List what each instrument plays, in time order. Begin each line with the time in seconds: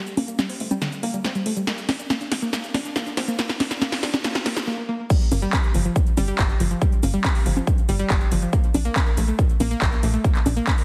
0.07 closed hi-hat, shaker
0.17 analog synth bass G1, synth pluck A#3, open hi-hat, high conga
0.28 synth pluck A#3, closed hi-hat, shaker
0.39 synth pluck G3, snare, closed hi-hat, high conga, shaker
0.49 synth pluck C4, open hi-hat, shaker
0.60 analog synth bass G1, synth pluck A3, open hi-hat
0.71 synth pluck G3, closed hi-hat, high conga, shaker
0.82 synth pluck D3, snare, closed hi-hat, shaker
0.92 closed hi-hat, shaker
1.03 analog synth bass G1, synth pluck A#3, open hi-hat
1.14 synth pluck G3, closed hi-hat, shaker
1.24 analog synth bass G1, synth pluck C4, snare, closed hi-hat, shaker
1.35 synth pluck G3, closed hi-hat, shaker
1.46 analog synth bass G1, synth pluck A3, open hi-hat
1.57 synth pluck G3, closed hi-hat, shaker
1.67 synth pluck A#3, snare, closed hi-hat, shaker
1.78 closed hi-hat, shaker
1.89 analog synth bass A#1, synth pluck D4, snare, open hi-hat, high conga
1.99 synth pluck D4, closed hi-hat, shaker
2.10 synth pluck A#3, snare, closed hi-hat, high conga, shaker
2.21 synth pluck D4, closed hi-hat, shaker
2.32 analog synth bass A#1, synth pluck C4, snare, open hi-hat
2.42 synth pluck A#3, shaker
2.53 synth pluck A#3, snare, closed hi-hat, shaker
2.64 closed hi-hat, shaker
2.74 analog synth bass A#1, synth pluck D4, snare, open hi-hat, high conga
2.85 synth pluck D4, closed hi-hat, shaker
2.96 analog synth bass A#1, synth pluck A#3, snare, closed hi-hat, shaker
3.07 synth pluck D4, closed hi-hat, shaker
3.17 analog synth bass A#1, synth pluck C4, snare, open hi-hat
3.28 synth pluck A#3, shaker
3.39 synth pluck A#3, snare, closed hi-hat, shaker
3.49 snare, closed hi-hat, shaker
3.60 analog synth bass A#1, synth pluck D4, snare, open hi-hat, high conga
3.71 synth pluck D4, snare, closed hi-hat, shaker
3.82 synth pluck A#3, snare, closed hi-hat, high conga, shaker
3.92 snare, open hi-hat, shaker
4.03 analog synth bass A#1, synth pluck D4, snare, open hi-hat
4.14 synth pluck D4, snare, high conga, shaker
4.24 synth pluck A#3, snare, closed hi-hat, shaker
4.35 snare, closed hi-hat, shaker
4.46 analog synth bass A#1, synth pluck A#3, snare, open hi-hat
4.57 snare, closed hi-hat, shaker
4.67 synth pluck A#3
4.89 synth pluck A#3
5.10 synth pluck G3, kick, closed hi-hat, crash, shaker
5.21 closed hi-hat, shaker
5.32 analog synth bass G1, synth pluck A#3, open hi-hat, high conga, shaker
5.42 synth pluck G3, closed hi-hat, shaker
5.53 synth pluck G4, kick, clap, closed hi-hat, high conga, shaker
5.64 synth pluck G4, closed hi-hat, shaker
5.74 analog synth bass G1, synth pluck F3, open hi-hat, shaker
5.85 synth pluck F3, closed hi-hat, shaker
5.96 kick, closed hi-hat, shaker
6.07 closed hi-hat, shaker
6.17 analog synth bass G1, synth pluck G3, open hi-hat, high conga, shaker
6.28 synth pluck G3, closed hi-hat, shaker
6.39 analog synth bass G1, kick, clap, closed hi-hat, shaker
6.49 synth pluck G4, closed hi-hat, shaker
6.60 analog synth bass G1, synth pluck F3, open hi-hat, shaker
6.71 synth pluck F3, closed hi-hat, shaker
6.82 synth pluck G3, kick, closed hi-hat, shaker
6.92 closed hi-hat, shaker
7.03 analog synth bass G1, synth pluck A#3, open hi-hat, high conga, shaker
7.14 synth pluck G3, closed hi-hat, shaker
7.24 synth pluck G4, kick, clap, closed hi-hat, high conga, shaker
7.35 synth pluck G4, open hi-hat, shaker
7.46 analog synth bass G1, synth pluck F3, open hi-hat, shaker
7.57 synth pluck F3, closed hi-hat, high conga, shaker
7.67 synth pluck G2, kick, closed hi-hat, shaker
7.78 closed hi-hat, shaker
7.89 analog synth bass G1, synth pluck G3, open hi-hat, shaker
7.99 synth pluck G3, closed hi-hat, shaker
8.10 analog synth bass G1, synth pluck G4, kick, clap, closed hi-hat, shaker
8.21 synth pluck G4, closed hi-hat, shaker
8.32 analog synth bass G1, synth pluck F3, open hi-hat, shaker
8.42 synth pluck F3, closed hi-hat, shaker
8.53 synth pluck A#3, kick, closed hi-hat, shaker
8.64 closed hi-hat, shaker
8.74 analog synth bass A#1, synth pluck D4, open hi-hat, high conga, shaker
8.85 synth pluck A#3, closed hi-hat, shaker
8.96 synth pluck A#4, kick, clap, closed hi-hat, high conga, shaker
9.07 synth pluck A#4, closed hi-hat, shaker
9.17 analog synth bass A#1, synth pluck A3, open hi-hat, shaker
9.28 synth pluck A3, closed hi-hat, shaker
9.39 synth pluck A#2, kick, closed hi-hat, shaker
9.49 closed hi-hat, shaker
9.60 analog synth bass A#1, synth pluck A#3, open hi-hat, high conga, shaker
9.71 synth pluck A#3, shaker
9.82 analog synth bass A#1, kick, clap, closed hi-hat, shaker
9.92 synth pluck A#4, closed hi-hat, shaker
10.03 analog synth bass A#1, synth pluck A3, open hi-hat, shaker
10.14 synth pluck A3, closed hi-hat, shaker
10.24 synth pluck A#3, kick, closed hi-hat, shaker
10.35 clap, closed hi-hat, shaker
10.46 analog synth bass A#1, synth pluck D4, open hi-hat, high conga, shaker
10.57 synth pluck A#3, closed hi-hat, shaker
10.67 kick, clap, closed hi-hat, high conga, shaker
10.78 synth pluck A#4, open hi-hat, shaker